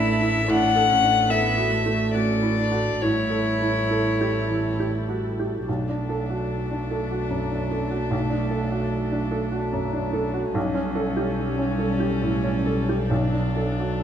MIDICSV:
0, 0, Header, 1, 6, 480
1, 0, Start_track
1, 0, Key_signature, 2, "minor"
1, 0, Tempo, 827586
1, 273, Time_signature, 3, 2, 24, 8
1, 1238, Tempo, 884956
1, 3158, Tempo, 815217
1, 6518, Tempo, 837989
1, 6998, Tempo, 886263
1, 7979, End_track
2, 0, Start_track
2, 0, Title_t, "Violin"
2, 0, Program_c, 0, 40
2, 0, Note_on_c, 0, 76, 78
2, 282, Note_on_c, 0, 78, 96
2, 291, Note_off_c, 0, 76, 0
2, 752, Note_on_c, 0, 76, 80
2, 761, Note_off_c, 0, 78, 0
2, 1239, Note_off_c, 0, 76, 0
2, 1244, Note_on_c, 0, 74, 67
2, 1718, Note_on_c, 0, 73, 60
2, 1726, Note_off_c, 0, 74, 0
2, 2686, Note_off_c, 0, 73, 0
2, 3162, Note_on_c, 0, 62, 40
2, 6011, Note_off_c, 0, 62, 0
2, 6034, Note_on_c, 0, 61, 56
2, 7452, Note_off_c, 0, 61, 0
2, 7473, Note_on_c, 0, 62, 42
2, 7979, Note_off_c, 0, 62, 0
2, 7979, End_track
3, 0, Start_track
3, 0, Title_t, "Felt piano"
3, 0, Program_c, 1, 0
3, 0, Control_c, 1, 64, 127
3, 0, Note_on_c, 1, 45, 74
3, 0, Note_on_c, 1, 52, 51
3, 0, Note_on_c, 1, 61, 51
3, 0, Note_on_c, 1, 62, 45
3, 0, Note_on_c, 1, 64, 56
3, 0, Note_on_c, 1, 69, 56
3, 116, Note_off_c, 1, 64, 0
3, 116, Note_on_c, 1, 64, 53
3, 121, Note_off_c, 1, 62, 0
3, 252, Note_off_c, 1, 45, 0
3, 274, Note_off_c, 1, 64, 0
3, 279, Note_on_c, 1, 45, 70
3, 285, Control_c, 1, 64, 0
3, 286, Note_off_c, 1, 69, 0
3, 288, Note_off_c, 1, 52, 0
3, 289, Note_off_c, 1, 61, 0
3, 380, Control_c, 1, 64, 127
3, 440, Note_on_c, 1, 69, 53
3, 599, Note_on_c, 1, 62, 51
3, 690, Note_off_c, 1, 69, 0
3, 754, Note_on_c, 1, 69, 52
3, 850, Note_off_c, 1, 62, 0
3, 912, Note_on_c, 1, 66, 47
3, 1009, Note_off_c, 1, 69, 0
3, 1077, Note_on_c, 1, 57, 47
3, 1172, Note_off_c, 1, 66, 0
3, 1239, Note_on_c, 1, 66, 46
3, 1334, Note_off_c, 1, 57, 0
3, 1393, Note_on_c, 1, 64, 38
3, 1491, Note_off_c, 1, 66, 0
3, 1553, Note_off_c, 1, 64, 0
3, 1553, Note_on_c, 1, 66, 42
3, 1696, Note_off_c, 1, 45, 0
3, 1715, Note_off_c, 1, 66, 0
3, 1718, Note_on_c, 1, 45, 52
3, 1726, Control_c, 1, 64, 0
3, 1819, Control_c, 1, 64, 127
3, 1872, Note_on_c, 1, 69, 43
3, 2039, Note_on_c, 1, 64, 39
3, 2134, Note_off_c, 1, 69, 0
3, 2200, Note_on_c, 1, 69, 41
3, 2298, Note_off_c, 1, 64, 0
3, 2363, Note_on_c, 1, 67, 38
3, 2459, Note_off_c, 1, 69, 0
3, 2520, Note_on_c, 1, 52, 35
3, 2621, Note_off_c, 1, 67, 0
3, 2682, Note_on_c, 1, 67, 36
3, 2778, Note_off_c, 1, 52, 0
3, 2840, Note_on_c, 1, 66, 32
3, 2939, Note_off_c, 1, 67, 0
3, 3002, Note_off_c, 1, 66, 0
3, 3006, Note_on_c, 1, 67, 35
3, 3138, Note_off_c, 1, 45, 0
3, 3159, Note_off_c, 1, 67, 0
3, 3165, Note_on_c, 1, 35, 38
3, 3169, Control_c, 1, 64, 0
3, 3264, Control_c, 1, 64, 127
3, 3284, Note_on_c, 1, 62, 28
3, 3405, Note_on_c, 1, 69, 33
3, 3478, Note_off_c, 1, 62, 0
3, 3526, Note_on_c, 1, 66, 31
3, 3598, Note_off_c, 1, 69, 0
3, 3764, Note_on_c, 1, 62, 30
3, 3886, Note_on_c, 1, 69, 34
3, 3911, Note_off_c, 1, 66, 0
3, 3958, Note_off_c, 1, 62, 0
3, 4004, Note_on_c, 1, 66, 32
3, 4078, Note_off_c, 1, 69, 0
3, 4115, Note_on_c, 1, 42, 33
3, 4197, Note_off_c, 1, 66, 0
3, 4242, Note_on_c, 1, 62, 29
3, 4311, Note_off_c, 1, 42, 0
3, 4358, Note_on_c, 1, 69, 30
3, 4433, Note_off_c, 1, 62, 0
3, 4470, Note_on_c, 1, 66, 38
3, 4550, Note_off_c, 1, 69, 0
3, 4580, Note_off_c, 1, 35, 0
3, 4589, Note_on_c, 1, 35, 45
3, 4612, Control_c, 1, 64, 0
3, 4665, Note_off_c, 1, 66, 0
3, 4703, Control_c, 1, 64, 127
3, 4703, Note_on_c, 1, 62, 38
3, 4825, Note_on_c, 1, 69, 35
3, 4901, Note_off_c, 1, 62, 0
3, 4947, Note_on_c, 1, 66, 38
3, 5022, Note_off_c, 1, 69, 0
3, 5186, Note_on_c, 1, 62, 36
3, 5300, Note_on_c, 1, 69, 43
3, 5331, Note_off_c, 1, 66, 0
3, 5379, Note_off_c, 1, 62, 0
3, 5421, Note_on_c, 1, 66, 38
3, 5496, Note_off_c, 1, 69, 0
3, 5543, Note_on_c, 1, 42, 40
3, 5617, Note_off_c, 1, 66, 0
3, 5663, Note_on_c, 1, 62, 39
3, 5739, Note_off_c, 1, 42, 0
3, 5782, Note_on_c, 1, 69, 42
3, 5860, Note_off_c, 1, 62, 0
3, 5902, Note_on_c, 1, 66, 44
3, 5980, Note_off_c, 1, 69, 0
3, 6004, Note_off_c, 1, 35, 0
3, 6026, Note_on_c, 1, 35, 55
3, 6028, Note_off_c, 1, 66, 0
3, 6043, Control_c, 1, 64, 0
3, 6134, Control_c, 1, 64, 127
3, 6143, Note_on_c, 1, 61, 44
3, 6266, Note_on_c, 1, 69, 49
3, 6342, Note_off_c, 1, 61, 0
3, 6392, Note_on_c, 1, 67, 44
3, 6465, Note_off_c, 1, 69, 0
3, 6634, Note_on_c, 1, 61, 40
3, 6748, Note_on_c, 1, 69, 45
3, 6777, Note_off_c, 1, 67, 0
3, 6827, Note_off_c, 1, 61, 0
3, 6872, Note_on_c, 1, 67, 41
3, 6945, Note_off_c, 1, 69, 0
3, 6998, Note_on_c, 1, 45, 39
3, 7066, Note_off_c, 1, 67, 0
3, 7116, Note_on_c, 1, 61, 36
3, 7186, Note_off_c, 1, 45, 0
3, 7236, Note_on_c, 1, 69, 38
3, 7305, Note_off_c, 1, 61, 0
3, 7362, Note_on_c, 1, 67, 36
3, 7426, Note_off_c, 1, 69, 0
3, 7449, Note_off_c, 1, 35, 0
3, 7477, Note_on_c, 1, 35, 48
3, 7478, Note_off_c, 1, 67, 0
3, 7485, Control_c, 1, 64, 0
3, 7594, Control_c, 1, 64, 127
3, 7594, Note_on_c, 1, 62, 34
3, 7726, Note_on_c, 1, 69, 37
3, 7788, Note_off_c, 1, 62, 0
3, 7849, Note_on_c, 1, 66, 35
3, 7915, Note_off_c, 1, 69, 0
3, 7979, Note_off_c, 1, 35, 0
3, 7979, Note_off_c, 1, 66, 0
3, 7979, End_track
4, 0, Start_track
4, 0, Title_t, "Cello"
4, 0, Program_c, 2, 42
4, 0, Note_on_c, 2, 64, 75
4, 275, Note_off_c, 2, 64, 0
4, 279, Note_on_c, 2, 62, 77
4, 512, Note_on_c, 2, 61, 63
4, 521, Note_off_c, 2, 62, 0
4, 753, Note_on_c, 2, 59, 65
4, 761, Note_off_c, 2, 61, 0
4, 995, Note_on_c, 2, 57, 58
4, 1004, Note_off_c, 2, 59, 0
4, 1242, Note_on_c, 2, 61, 61
4, 1250, Note_off_c, 2, 57, 0
4, 1479, Note_on_c, 2, 62, 52
4, 1487, Note_off_c, 2, 61, 0
4, 1718, Note_on_c, 2, 64, 66
4, 1727, Note_off_c, 2, 62, 0
4, 2926, Note_off_c, 2, 64, 0
4, 3163, Note_on_c, 2, 57, 44
4, 6012, Note_off_c, 2, 57, 0
4, 6048, Note_on_c, 2, 55, 63
4, 7474, Note_on_c, 2, 54, 50
4, 7482, Note_off_c, 2, 55, 0
4, 7979, Note_off_c, 2, 54, 0
4, 7979, End_track
5, 0, Start_track
5, 0, Title_t, "String section"
5, 0, Program_c, 3, 48
5, 0, Note_on_c, 3, 49, 67
5, 0, Note_on_c, 3, 57, 64
5, 0, Note_on_c, 3, 69, 59
5, 271, Note_on_c, 3, 50, 57
5, 276, Note_off_c, 3, 49, 0
5, 1707, Note_off_c, 3, 69, 0
5, 1712, Note_on_c, 3, 55, 47
5, 1712, Note_on_c, 3, 64, 47
5, 1713, Note_on_c, 3, 69, 50
5, 1714, Note_off_c, 3, 50, 0
5, 1717, Note_off_c, 3, 57, 0
5, 3135, Note_off_c, 3, 69, 0
5, 3156, Note_off_c, 3, 55, 0
5, 3156, Note_off_c, 3, 64, 0
5, 3156, Note_on_c, 3, 62, 39
5, 3156, Note_on_c, 3, 69, 35
5, 3159, Note_on_c, 3, 54, 38
5, 6008, Note_off_c, 3, 62, 0
5, 6008, Note_off_c, 3, 69, 0
5, 6010, Note_off_c, 3, 54, 0
5, 6034, Note_on_c, 3, 55, 52
5, 6034, Note_on_c, 3, 61, 53
5, 6036, Note_on_c, 3, 69, 56
5, 7474, Note_off_c, 3, 55, 0
5, 7474, Note_off_c, 3, 61, 0
5, 7477, Note_on_c, 3, 54, 39
5, 7480, Note_on_c, 3, 62, 41
5, 7979, Note_off_c, 3, 54, 0
5, 7979, Note_off_c, 3, 62, 0
5, 7979, Note_off_c, 3, 69, 0
5, 7979, End_track
6, 0, Start_track
6, 0, Title_t, "Double bass"
6, 0, Program_c, 4, 43
6, 0, Note_on_c, 4, 33, 68
6, 1714, Note_off_c, 4, 33, 0
6, 1717, Note_on_c, 4, 33, 53
6, 3137, Note_off_c, 4, 33, 0
6, 3162, Note_on_c, 4, 35, 38
6, 6012, Note_off_c, 4, 35, 0
6, 6031, Note_on_c, 4, 35, 56
6, 7979, Note_off_c, 4, 35, 0
6, 7979, End_track
0, 0, End_of_file